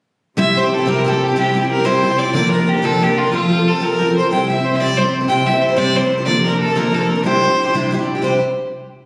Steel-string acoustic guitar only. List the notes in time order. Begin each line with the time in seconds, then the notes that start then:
0.37 C3 G3 C4 E4 G4
0.55 G3 C4 E4 G4
0.63 C4 E4 G4
0.78 C4 E4 G4
0.86 C3 G3 C4 E4 G4
1.05 G3 C4 E4 G4
1.12 C4 E4 G4
1.28 C4 E4 G4
1.36 C3 G3 C4 E4 G4
1.53 G3 C4 E4 G4
1.61 C4 E4 G4
1.77 C4 E4 G4
1.84 C3 G3 C4 E4 G4
2.02 G3 C4 E4 G4
2.10 C4 E4 G4
2.25 C4 E4 G4
2.33 D3 F3 A#3 D4 A#4
2.51 F3 A#3 D4 A#4
2.59 A#3 D4 A#4
2.75 A#3 D4 A#4
2.82 D3 F3 A#3 D4 A#4
3.00 F3 A#3 D4 A#4
3.09 A#3 D4 A#4
3.24 A#3 D4 A#4
3.31 F3 C4 F4 A4
3.49 F3 C4 F4 A4
3.57 C4 F4 A4
3.73 C4 F4 A4
3.80 F3 C4 F4 A4
3.99 F3 C4 F4 A4
4.07 C4 F4 A4
4.23 C4 F4 A4
4.31 C3 G3 C4 E4 C5
4.48 G3 C4 E4 C5
4.56 C4 E4 C5
4.72 C4 E4 C5
4.80 C3 G3 C4 E4 C5
4.98 G3 C4 E4 C5
5.05 C4 E4 C5
5.21 C4 E4 C5
5.28 C3 G3 C4 E4 C5
5.46 G3 C4 E4 C5
5.53 C4 E4 C5
5.68 C4 E4 C5
5.76 C3 G3 C4 E4 C5
5.95 G3 C4 E4 C5
6.03 C4 E4 C5
6.18 C4 E4 C5
6.26 D3 F3 A#3 D4 A#4
6.44 F3 A#3 D4 A#4
6.52 A#3 D4 A#4
6.68 A#3 D4 A#4
6.75 D3 F3 A#3 D4 A#4
6.93 F3 A#3 D4 A#4
7.00 A#3 D4 A#4
7.16 A#3 D4 A#4
7.24 C3 G3 D4 E4 G4
7.41 G3 D4 E4 G4
7.50 D4 E4 G4
7.65 D4 E4 G4
7.74 C3 G3 D4 E4 G4
7.91 G3 D4 E4 G4
7.99 D4 E4 G4
8.15 D4 E4 G4
8.22 C3 G3 D4 E4 G4